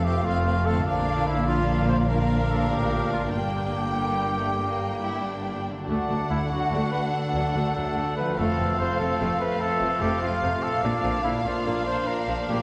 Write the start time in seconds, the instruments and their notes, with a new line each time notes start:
Already playing: double bass section F1, cello section F2, trombone section F3 A3, harp F3 C4 F4 A4, clarinet A3, french horn section C4 F4, flute section F5
0.04 violin section C4 F5, trumpet G4
0.23 double bass section F1, cello section F2, trombone section F3 A3, viola section A3, violin section C4 F5, french horn section C4 F4, trumpet F4
0.45 viola section A3, violin section C4 F5
0.65 harp D3, viola section A3, violin section C4 F5, trumpet A4
0.74 harp D4
0.78 harp F4
0.82 double bass section A#1, trombone section F3 A#3, viola section A#3, clarinet A#3, trumpet D4, french horn section D4 F4, harp A#4, violin section F5
0.87 cello section A#2, violin section D4
1.27 trumpet E4
1.45 trombone section F3 A#3, viola section A#3, violin section D4 F5, french horn section D4 F4, trumpet F4
1.88 trumpet C5
2.08 trombone section F3 D4, violin section D4 F5, french horn section D4 F4, trumpet A#4, viola section A#4
2.50 trumpet A4
2.70 double bass section A1, cello section A2, trumpet G4
3.12 trumpet F4
3.16 harp G2
3.21 harp D4
3.25 harp G4
3.30 violin section D4 G5, trumpet G4, harp A#4, flute section G5
3.34 double bass section G1, cello section G2, trombone section D3 A#3, viola section A#3, french horn section D4 G4
3.96 violin section G3
4.40 violin section A3
4.61 violin section A#3
5.01 violin section E4
5.23 violin section D4
5.70 harp D3
5.75 harp D4
5.79 harp F#4
5.83 harp A4
5.88 cello section D2, double bass section D2, trombone section D3 A3, viola section A3, clarinet A3, french horn section D4 F#4, violin section D4 F#5, trumpet D4, flute section F#5
6.08 cello section D2, double bass section D2, viola section F#3
6.30 cello section D2, double bass section D2, viola section D3, trumpet E4
6.50 cello section D2, double bass section D2, trombone section D3 A3, viola section F#3, french horn section D4 F#4, trumpet F#4
6.72 cello section D2, double bass section D2, viola section A3
6.92 trumpet B4
7.12 trombone section D3 A3, french horn section D4 F#4, trumpet A4
7.34 cello section D2, double bass section D2, viola section F#3
7.55 cello section D2, double bass section D2, viola section A3
7.75 cello section D2, double bass section D2, trombone section D3 A3, viola section F#3, french horn section D4 F#4, trumpet A4
7.95 cello section D2, double bass section D2, viola section D3
8.16 harp F3, trumpet B4
8.24 harp C4
8.29 harp F4
8.33 trombone section F3, harp A4, violin section F5
8.38 double bass section F1, cello section F2, trombone section A3, viola section A3, french horn section C4 F4, violin section C4, trumpet A4, flute section F5
8.59 double bass section F1, cello section F2, viola section F3
8.79 double bass section F1, cello section F2, viola section C3, trumpet C5
8.99 double bass section F1, cello section F2, trombone section F3 A3, viola section F3, french horn section C4 F4, trumpet A4
9.21 double bass section F1, cello section F2, viola section A3
9.40 trumpet B4
9.61 trombone section F3 A3, french horn section C4 F4, trumpet A4
9.81 double bass section F1, cello section F2, viola section F3
10.01 double bass section F1, cello section F2, viola section A3, trumpet G4
10.21 double bass section F1, cello section F2, viola section F3, trombone section F3 A3, french horn section C4 F4, trumpet F4
10.42 double bass section F1, cello section F2, viola section C3
10.63 harp A#2, trumpet A4
10.71 harp D4
10.75 harp F4
10.79 violin section D4, trumpet D4, harp A#4
10.83 double bass section A#1, cello section A#2, trombone section F3 A#3, viola section A#3, clarinet A#3, french horn section D4 F4
11.03 double bass section A#1, cello section A#2, viola section F3
11.24 double bass section A#1, cello section A#2, viola section D3, trumpet E4
11.44 double bass section A#1, cello section A#2, trombone section F3 A#3, viola section F3, french horn section D4 F4, trumpet F4
11.65 double bass section A#1, cello section A#2, viola section A#3
11.86 trumpet C5
12.05 trombone section F3 A#3, french horn section D4 F4, trumpet A#4
12.27 double bass section A#1, cello section A#2, viola section F3
12.48 double bass section A#1, cello section A#2, viola section A#3, trumpet G4